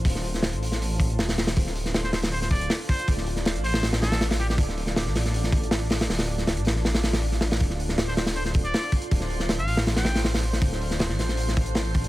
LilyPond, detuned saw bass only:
\new Staff \with { instrumentName = "Detuned saw bass" } { \clef bass \time 4/4 \key d \minor \tempo 4 = 159 d,,4~ d,,16 a,,4. a,,16 ees,,4 | d,,2. r4 | d,,4~ d,,16 a,,2~ a,,8. | d,,4~ d,,16 a,,2~ a,,8. |
d,,4~ d,,16 a,,4.~ a,,16 a,,4 | d,,2. r4 | d,,4~ d,,16 a,,2~ a,,8. | d,,4~ d,,16 a,,2~ a,,8. | }